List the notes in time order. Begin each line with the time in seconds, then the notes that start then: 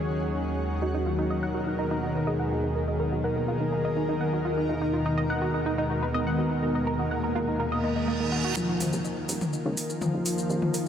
Already playing: D#2 D#3 F#3 G#3 C#4 G#4 C#5 F#5
0.82 B2 D#4 F#4 A#4
0.95 D#4 A#4
1.06 F4
1.19 D#4
1.30 D#5
1.43 F#5
1.55 F#4
1.67 D#4
1.79 D#4
1.91 D#4
2.03 F#4 D#5
2.15 B4
2.27 G#4 D#5
2.40 F#5
2.51 F#4
2.64 D#4
2.76 G#4 A#4
2.88 D#5
3.00 A#4
3.12 F#4
3.24 A#4 F#5
3.36 A#4
3.48 F4
3.61 D#4
3.72 A#4
3.85 D#5
3.97 D#4
4.09 D#4
4.21 F#5
4.33 F#4
4.45 F4
4.57 D#4
4.69 D#2 B2 G#3 D#4 A#4
4.82 D#4
4.93 F4
5.06 D#4
5.18 D#5
5.30 F#5
5.42 F#4
5.54 D#4
5.66 D#4 G#5
5.78 D#4
5.90 F#4
6.03 B4
6.14 B3 D#5
6.27 F#5
6.39 F#4
6.51 D#4
6.63 A#4
6.75 D#5
6.87 A#4
6.99 F#4
7.11 A#3 F#5
7.24 A#4
7.35 F4
7.48 D#4
7.60 A#4, reverse cymbal
7.72 D#5
7.84 D#4
7.96 D#4
8.08 A#3
8.20 A#3
8.32 F#4
8.45 F#4
8.56 D#1 D#3 F3 A#3 D#4 F4 A#4, shaker
8.69 D#4
8.80 F4, open hi-hat, mid tom, shaker
8.93 D#1 D#4, shaker
8.98 F5
9.05 D#5, shaker
9.17 F5
9.29 D#1 F4, open hi-hat, shaker
9.41 D#4, mid tom, shaker
9.53 D#4, shaker
9.65 C#2 D#4
9.77 F4, open hi-hat, shaker
9.90 A#4, shaker
10.01 F3 F4 D#5, mid tom, shaker
10.14 D#1 F5
10.26 F4, open hi-hat, shaker
10.38 D#4, shaker
10.50 D#1 A#4, shaker
10.62 D#5, mid tom
10.74 A#4, open hi-hat, shaker